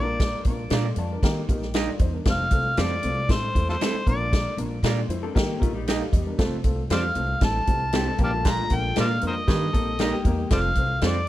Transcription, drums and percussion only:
0.20 kick, snare, closed hi-hat
0.45 kick, closed hi-hat
0.70 snare, closed hi-hat
0.96 closed hi-hat
1.23 kick, snare, closed hi-hat
1.49 kick, closed hi-hat
1.62 snare
1.74 snare, closed hi-hat
1.99 kick, closed hi-hat
2.25 kick, snare, closed hi-hat
2.51 kick, closed hi-hat
2.77 snare, closed hi-hat
3.03 closed hi-hat
3.29 kick, snare, closed hi-hat
3.55 kick, closed hi-hat
3.69 snare
3.81 snare, closed hi-hat
4.07 kick, closed hi-hat
4.33 kick, snare, closed hi-hat
4.58 closed hi-hat
4.84 snare, closed hi-hat
5.10 closed hi-hat
5.36 kick, snare, closed hi-hat
5.62 kick, closed hi-hat
5.88 snare, closed hi-hat
6.13 kick, closed hi-hat
6.39 kick, snare, closed hi-hat
6.64 kick, closed hi-hat
6.90 snare, closed hi-hat
7.15 closed hi-hat
7.41 kick, snare, closed hi-hat
7.67 kick, closed hi-hat
7.92 snare, closed hi-hat
8.18 kick, closed hi-hat
8.45 kick, snare, closed hi-hat
8.70 kick, closed hi-hat
8.96 snare, closed hi-hat
9.21 closed hi-hat
9.48 kick, snare, closed hi-hat
9.74 kick, closed hi-hat
9.99 snare, closed hi-hat
10.25 kick, closed hi-hat
10.50 kick, snare, closed hi-hat
10.75 kick, closed hi-hat
11.01 snare, closed hi-hat

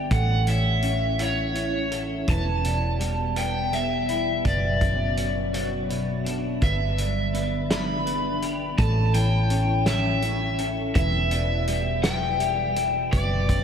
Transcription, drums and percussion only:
0.11 kick, closed hi-hat
0.47 closed hi-hat
0.82 closed hi-hat
1.19 closed hi-hat
1.55 closed hi-hat
1.92 closed hi-hat
2.28 kick, closed hi-hat
2.65 closed hi-hat
3.00 closed hi-hat
3.36 closed hi-hat
3.73 closed hi-hat
4.09 closed hi-hat
4.45 kick, closed hi-hat
4.81 kick, closed hi-hat
5.17 closed hi-hat
5.54 closed hi-hat
5.90 closed hi-hat
6.26 closed hi-hat
6.62 kick, closed hi-hat
6.98 closed hi-hat
7.34 closed hi-hat
7.71 snare, closed hi-hat
8.07 closed hi-hat
8.42 closed hi-hat
8.78 kick, closed hi-hat
9.14 closed hi-hat
9.50 closed hi-hat
9.86 snare, closed hi-hat
10.22 closed hi-hat
10.58 closed hi-hat
10.95 kick, closed hi-hat
11.31 closed hi-hat
11.67 closed hi-hat
12.04 snare, closed hi-hat
12.40 closed hi-hat
12.76 closed hi-hat
13.13 kick, closed hi-hat
13.49 kick, closed hi-hat

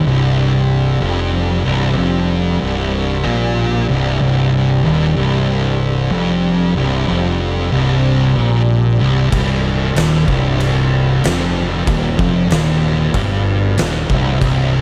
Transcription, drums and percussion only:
9.32 kick, crash
9.96 snare, crash
10.28 kick
10.60 crash
11.24 snare, crash
11.87 kick, crash
12.19 kick
12.50 snare, crash
13.14 kick, crash
13.78 snare, crash
14.10 kick
14.41 kick, crash

